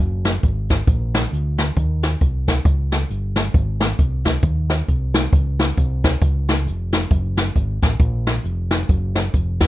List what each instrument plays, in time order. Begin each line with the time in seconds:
0.00 fingered electric bass F#1
0.25 snare, closed hi-hat
0.43 fingered electric bass G#1, kick, closed hi-hat
0.69 kick, snare, closed hi-hat
0.87 fingered electric bass A#1, kick, closed hi-hat
1.14 snare, closed hi-hat
1.32 fingered electric bass D2, closed hi-hat
1.58 snare, closed hi-hat
1.76 fingered electric bass D#2, kick, closed hi-hat
2.03 snare, closed hi-hat
2.21 fingered electric bass C2, kick, closed hi-hat
2.47 kick, snare, closed hi-hat
2.65 fingered electric bass C#2, kick, closed hi-hat
2.92 snare, closed hi-hat
3.10 fingered electric bass G1, closed hi-hat
3.36 snare, closed hi-hat
3.54 fingered electric bass G#1, kick, closed hi-hat
3.80 snare, closed hi-hat
3.99 fingered electric bass C2, kick, closed hi-hat
4.24 kick, snare, closed hi-hat
4.42 fingered electric bass D#2, kick, closed hi-hat
4.70 snare, closed hi-hat
4.88 fingered electric bass C2, kick, closed hi-hat
5.14 snare, closed hi-hat
5.33 fingered electric bass C#2, kick, closed hi-hat
5.59 snare, closed hi-hat
5.77 fingered electric bass C2, kick, closed hi-hat
6.03 kick, snare, closed hi-hat
6.21 fingered electric bass C#2, kick, closed hi-hat
6.49 snare, closed hi-hat
6.66 fingered electric bass F1, closed hi-hat
6.93 snare, closed hi-hat
7.11 fingered electric bass F#1, kick, closed hi-hat
7.37 snare, closed hi-hat
7.55 fingered electric bass G#1, kick, closed hi-hat
7.82 fingered electric bass A1, kick, snare, closed hi-hat
7.99 fingered electric bass A#1, kick, closed hi-hat
8.27 snare, closed hi-hat
8.44 fingered electric bass F1, closed hi-hat
8.71 snare, closed hi-hat
8.89 fingered electric bass F#1, kick, closed hi-hat
9.15 snare, closed hi-hat
9.34 fingered electric bass F1, kick, closed hi-hat
9.60 kick, snare, closed hi-hat